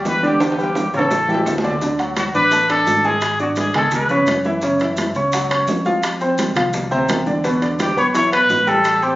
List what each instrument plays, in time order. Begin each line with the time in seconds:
Already playing: grand piano G3 F#4 G4
0.05 fingered electric bass E2, trumpet B4, high bongo, low bongo, high conga, low timbale, maracas
0.23 grand piano D3 D4 D5, trumpet G4, high bongo, high conga, maracas
0.40 high bongo, high timbale, maracas
0.52 high timbale
0.58 grand piano G3 G4 B4, high bongo, high conga, maracas
0.63 high timbale
0.75 high bongo, high conga, high timbale, maracas
0.93 fingered electric bass A1, grand piano C#3 C#4 C#5, trumpet A4, high conga, low conga, maracas
0.99 high timbale
1.11 high bongo, high conga, low timbale, maracas
1.28 grand piano E3 E4 G4, high bongo, high conga, maracas
1.34 low timbale
1.46 fingered electric bass D2, high bongo, low bongo, low conga, low timbale, maracas
1.58 low timbale
1.64 grand piano D3 D4 D5, high bongo, low conga, maracas
1.70 low timbale
1.81 grand piano D3 D4 D5, high bongo, high conga, maracas
1.99 grand piano F#3 F#4 F#5, high bongo, high conga, high timbale, maracas
2.16 trumpet F#4, high bongo, high conga, high timbale, low timbale, maracas
2.33 fingered electric bass A1, grand piano D4 D5 D6, trumpet B4, high conga, maracas
2.51 grand piano A3 A4 A5, high bongo, high conga, high timbale, maracas
2.69 grand piano D4 D5 D6, trumpet A4, high bongo, high conga, high timbale, maracas
2.86 fingered electric bass G#1, high bongo, low bongo, high conga, low timbale, maracas
3.04 grand piano G#3 G#4 G#5, trumpet G#4, high bongo, high conga, maracas
3.21 high bongo, high conga, high timbale, maracas
3.39 grand piano D4 D5 D6, trumpet F#4, high bongo, high conga, maracas
3.56 trumpet G#4, high bongo, high conga, high timbale, low timbale, maracas
3.74 fingered electric bass C#2, grand piano G#3 G#4 G#5, trumpet A4, high conga, low conga, high timbale, maracas
3.91 trumpet B4, high bongo, high conga, low conga, maracas
4.09 fingered electric bass F2, grand piano C#3 C#4 C#5, high bongo, high conga, maracas
4.27 fingered electric bass F#2, high bongo, low bongo, high conga, high timbale, low timbale, maracas
4.44 grand piano E3 E4 E5, high bongo, high conga, maracas
4.62 grand piano C#3 C#4 C#5, high bongo, high conga, maracas
4.79 grand piano E3 E4 E5, high bongo, high conga, high timbale, maracas
4.97 high bongo, high conga, high timbale, low timbale, maracas
5.14 fingered electric bass C#2, grand piano C#4 C#5 C#6, high conga, maracas
5.32 grand piano F#3 F#4 F#5, high bongo, high conga, high timbale, maracas
5.50 grand piano C#4 C#5 C#6, high bongo, high conga, high timbale, maracas
5.67 fingered electric bass F2, high bongo, low bongo, high conga, low timbale, maracas
5.85 grand piano F3 F4 F5, high bongo, high conga, maracas
6.03 high bongo, high conga, high timbale, maracas
6.21 grand piano C4 C5 C6, high bongo, high conga, maracas
6.38 high bongo, high conga, high timbale, low timbale, maracas
6.55 fingered electric bass C2, grand piano F3 F4 F5, high conga, low conga, high timbale, maracas
6.73 high bongo, high conga, low conga, maracas
6.91 fingered electric bass D2, grand piano C3 C4 C5, high bongo, high conga, maracas
7.08 fingered electric bass E2, high bongo, low bongo, high conga, high timbale, low timbale, maracas
7.26 grand piano D3 D4 D5, high bongo, high conga, maracas
7.44 grand piano B2 B3 B4, high bongo, high conga, maracas
7.62 grand piano D3 D4 D5, high bongo, high conga, high timbale, maracas
7.79 trumpet G4, high bongo, high conga, high timbale, low timbale, maracas
7.97 fingered electric bass B1, grand piano B3 B4 B5, trumpet C#5, high conga, maracas
8.14 grand piano E3 E4 E5, trumpet C#5, high bongo, high conga, high timbale, maracas
8.32 grand piano B3 B4 B5, trumpet B4, high bongo, high conga, high timbale, maracas
8.50 fingered electric bass A1, high bongo, low bongo, high conga, low timbale, maracas
8.67 grand piano G3 G4 G5, trumpet A4, high bongo, high conga, maracas
8.84 high bongo, high timbale, maracas
9.02 grand piano C4 C5 C6, trumpet G4, high bongo, high conga, maracas